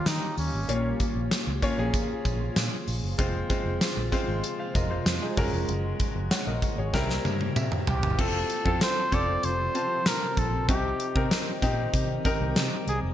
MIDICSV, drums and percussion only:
0, 0, Header, 1, 2, 480
1, 0, Start_track
1, 0, Tempo, 625000
1, 528, Time_signature, 4, 2, 24, 8
1, 10089, End_track
2, 0, Start_track
2, 0, Title_t, "Drums"
2, 47, Note_on_c, 9, 38, 105
2, 47, Note_on_c, 9, 42, 85
2, 48, Note_on_c, 9, 54, 68
2, 50, Note_off_c, 9, 54, 0
2, 50, Note_on_c, 9, 54, 88
2, 124, Note_off_c, 9, 38, 0
2, 124, Note_off_c, 9, 42, 0
2, 127, Note_off_c, 9, 54, 0
2, 288, Note_on_c, 9, 46, 70
2, 292, Note_on_c, 9, 54, 45
2, 365, Note_off_c, 9, 46, 0
2, 368, Note_off_c, 9, 54, 0
2, 529, Note_on_c, 9, 42, 93
2, 606, Note_off_c, 9, 42, 0
2, 767, Note_on_c, 9, 42, 69
2, 767, Note_on_c, 9, 54, 49
2, 769, Note_on_c, 9, 36, 89
2, 844, Note_off_c, 9, 42, 0
2, 844, Note_off_c, 9, 54, 0
2, 846, Note_off_c, 9, 36, 0
2, 1009, Note_on_c, 9, 38, 119
2, 1009, Note_on_c, 9, 54, 62
2, 1010, Note_on_c, 9, 42, 95
2, 1011, Note_off_c, 9, 54, 0
2, 1011, Note_on_c, 9, 54, 81
2, 1086, Note_off_c, 9, 38, 0
2, 1086, Note_off_c, 9, 42, 0
2, 1087, Note_off_c, 9, 54, 0
2, 1248, Note_on_c, 9, 36, 88
2, 1251, Note_on_c, 9, 42, 77
2, 1325, Note_off_c, 9, 36, 0
2, 1327, Note_off_c, 9, 42, 0
2, 1488, Note_on_c, 9, 36, 94
2, 1488, Note_on_c, 9, 42, 93
2, 1488, Note_on_c, 9, 54, 54
2, 1565, Note_off_c, 9, 36, 0
2, 1565, Note_off_c, 9, 42, 0
2, 1565, Note_off_c, 9, 54, 0
2, 1729, Note_on_c, 9, 36, 89
2, 1730, Note_on_c, 9, 42, 64
2, 1733, Note_on_c, 9, 54, 54
2, 1806, Note_off_c, 9, 36, 0
2, 1806, Note_off_c, 9, 42, 0
2, 1810, Note_off_c, 9, 54, 0
2, 1968, Note_on_c, 9, 38, 108
2, 1968, Note_on_c, 9, 42, 86
2, 1969, Note_on_c, 9, 54, 66
2, 1971, Note_off_c, 9, 54, 0
2, 1971, Note_on_c, 9, 54, 84
2, 2045, Note_off_c, 9, 38, 0
2, 2045, Note_off_c, 9, 42, 0
2, 2048, Note_off_c, 9, 54, 0
2, 2209, Note_on_c, 9, 46, 68
2, 2213, Note_on_c, 9, 54, 43
2, 2286, Note_off_c, 9, 46, 0
2, 2290, Note_off_c, 9, 54, 0
2, 2448, Note_on_c, 9, 36, 109
2, 2449, Note_on_c, 9, 42, 90
2, 2525, Note_off_c, 9, 36, 0
2, 2526, Note_off_c, 9, 42, 0
2, 2686, Note_on_c, 9, 42, 72
2, 2688, Note_on_c, 9, 36, 89
2, 2690, Note_on_c, 9, 54, 51
2, 2763, Note_off_c, 9, 42, 0
2, 2765, Note_off_c, 9, 36, 0
2, 2767, Note_off_c, 9, 54, 0
2, 2927, Note_on_c, 9, 54, 61
2, 2928, Note_on_c, 9, 38, 119
2, 2928, Note_on_c, 9, 42, 96
2, 2930, Note_off_c, 9, 54, 0
2, 2930, Note_on_c, 9, 54, 84
2, 3004, Note_off_c, 9, 38, 0
2, 3005, Note_off_c, 9, 42, 0
2, 3007, Note_off_c, 9, 54, 0
2, 3167, Note_on_c, 9, 36, 82
2, 3168, Note_on_c, 9, 54, 35
2, 3169, Note_on_c, 9, 42, 77
2, 3244, Note_off_c, 9, 36, 0
2, 3245, Note_off_c, 9, 42, 0
2, 3245, Note_off_c, 9, 54, 0
2, 3407, Note_on_c, 9, 42, 91
2, 3408, Note_on_c, 9, 54, 54
2, 3484, Note_off_c, 9, 42, 0
2, 3485, Note_off_c, 9, 54, 0
2, 3649, Note_on_c, 9, 36, 96
2, 3649, Note_on_c, 9, 42, 68
2, 3653, Note_on_c, 9, 54, 56
2, 3725, Note_off_c, 9, 36, 0
2, 3726, Note_off_c, 9, 42, 0
2, 3730, Note_off_c, 9, 54, 0
2, 3887, Note_on_c, 9, 38, 109
2, 3887, Note_on_c, 9, 42, 84
2, 3888, Note_on_c, 9, 54, 68
2, 3891, Note_off_c, 9, 54, 0
2, 3891, Note_on_c, 9, 54, 86
2, 3964, Note_off_c, 9, 38, 0
2, 3964, Note_off_c, 9, 42, 0
2, 3968, Note_off_c, 9, 54, 0
2, 4127, Note_on_c, 9, 36, 102
2, 4128, Note_on_c, 9, 46, 70
2, 4131, Note_on_c, 9, 54, 42
2, 4204, Note_off_c, 9, 36, 0
2, 4204, Note_off_c, 9, 46, 0
2, 4208, Note_off_c, 9, 54, 0
2, 4367, Note_on_c, 9, 42, 90
2, 4444, Note_off_c, 9, 42, 0
2, 4606, Note_on_c, 9, 42, 72
2, 4608, Note_on_c, 9, 36, 89
2, 4608, Note_on_c, 9, 54, 50
2, 4682, Note_off_c, 9, 42, 0
2, 4684, Note_off_c, 9, 36, 0
2, 4685, Note_off_c, 9, 54, 0
2, 4847, Note_on_c, 9, 38, 115
2, 4847, Note_on_c, 9, 42, 92
2, 4847, Note_on_c, 9, 54, 64
2, 4849, Note_off_c, 9, 54, 0
2, 4849, Note_on_c, 9, 54, 86
2, 4924, Note_off_c, 9, 38, 0
2, 4924, Note_off_c, 9, 42, 0
2, 4926, Note_off_c, 9, 54, 0
2, 5087, Note_on_c, 9, 36, 88
2, 5089, Note_on_c, 9, 42, 76
2, 5090, Note_on_c, 9, 54, 35
2, 5163, Note_off_c, 9, 36, 0
2, 5166, Note_off_c, 9, 42, 0
2, 5167, Note_off_c, 9, 54, 0
2, 5327, Note_on_c, 9, 36, 94
2, 5329, Note_on_c, 9, 38, 61
2, 5329, Note_on_c, 9, 54, 51
2, 5404, Note_off_c, 9, 36, 0
2, 5406, Note_off_c, 9, 38, 0
2, 5406, Note_off_c, 9, 54, 0
2, 5448, Note_on_c, 9, 38, 56
2, 5525, Note_off_c, 9, 38, 0
2, 5568, Note_on_c, 9, 48, 72
2, 5574, Note_on_c, 9, 54, 56
2, 5645, Note_off_c, 9, 48, 0
2, 5651, Note_off_c, 9, 54, 0
2, 5689, Note_on_c, 9, 48, 67
2, 5766, Note_off_c, 9, 48, 0
2, 5807, Note_on_c, 9, 47, 89
2, 5812, Note_on_c, 9, 54, 82
2, 5884, Note_off_c, 9, 47, 0
2, 5888, Note_off_c, 9, 54, 0
2, 5927, Note_on_c, 9, 45, 77
2, 6004, Note_off_c, 9, 45, 0
2, 6047, Note_on_c, 9, 43, 96
2, 6051, Note_on_c, 9, 54, 43
2, 6124, Note_off_c, 9, 43, 0
2, 6128, Note_off_c, 9, 54, 0
2, 6168, Note_on_c, 9, 43, 93
2, 6244, Note_off_c, 9, 43, 0
2, 6288, Note_on_c, 9, 36, 113
2, 6288, Note_on_c, 9, 49, 104
2, 6364, Note_off_c, 9, 36, 0
2, 6365, Note_off_c, 9, 49, 0
2, 6526, Note_on_c, 9, 42, 78
2, 6603, Note_off_c, 9, 42, 0
2, 6648, Note_on_c, 9, 36, 96
2, 6724, Note_off_c, 9, 36, 0
2, 6768, Note_on_c, 9, 38, 121
2, 6768, Note_on_c, 9, 54, 67
2, 6769, Note_on_c, 9, 42, 99
2, 6845, Note_off_c, 9, 38, 0
2, 6845, Note_off_c, 9, 42, 0
2, 6845, Note_off_c, 9, 54, 0
2, 7007, Note_on_c, 9, 36, 85
2, 7009, Note_on_c, 9, 42, 78
2, 7084, Note_off_c, 9, 36, 0
2, 7085, Note_off_c, 9, 42, 0
2, 7245, Note_on_c, 9, 42, 100
2, 7322, Note_off_c, 9, 42, 0
2, 7487, Note_on_c, 9, 42, 75
2, 7564, Note_off_c, 9, 42, 0
2, 7726, Note_on_c, 9, 38, 113
2, 7726, Note_on_c, 9, 42, 93
2, 7726, Note_on_c, 9, 54, 72
2, 7802, Note_off_c, 9, 42, 0
2, 7803, Note_off_c, 9, 38, 0
2, 7803, Note_off_c, 9, 54, 0
2, 7966, Note_on_c, 9, 36, 94
2, 7968, Note_on_c, 9, 42, 71
2, 8043, Note_off_c, 9, 36, 0
2, 8045, Note_off_c, 9, 42, 0
2, 8208, Note_on_c, 9, 36, 115
2, 8208, Note_on_c, 9, 42, 96
2, 8284, Note_off_c, 9, 36, 0
2, 8285, Note_off_c, 9, 42, 0
2, 8447, Note_on_c, 9, 42, 80
2, 8523, Note_off_c, 9, 42, 0
2, 8568, Note_on_c, 9, 36, 96
2, 8645, Note_off_c, 9, 36, 0
2, 8688, Note_on_c, 9, 38, 122
2, 8688, Note_on_c, 9, 54, 62
2, 8689, Note_on_c, 9, 42, 99
2, 8765, Note_off_c, 9, 38, 0
2, 8765, Note_off_c, 9, 42, 0
2, 8765, Note_off_c, 9, 54, 0
2, 8927, Note_on_c, 9, 36, 92
2, 8929, Note_on_c, 9, 42, 86
2, 9004, Note_off_c, 9, 36, 0
2, 9005, Note_off_c, 9, 42, 0
2, 9166, Note_on_c, 9, 42, 99
2, 9167, Note_on_c, 9, 36, 100
2, 9243, Note_off_c, 9, 42, 0
2, 9244, Note_off_c, 9, 36, 0
2, 9408, Note_on_c, 9, 42, 72
2, 9409, Note_on_c, 9, 36, 95
2, 9485, Note_off_c, 9, 36, 0
2, 9485, Note_off_c, 9, 42, 0
2, 9647, Note_on_c, 9, 42, 87
2, 9648, Note_on_c, 9, 38, 121
2, 9648, Note_on_c, 9, 54, 71
2, 9724, Note_off_c, 9, 38, 0
2, 9724, Note_off_c, 9, 42, 0
2, 9725, Note_off_c, 9, 54, 0
2, 9889, Note_on_c, 9, 42, 69
2, 9966, Note_off_c, 9, 42, 0
2, 10089, End_track
0, 0, End_of_file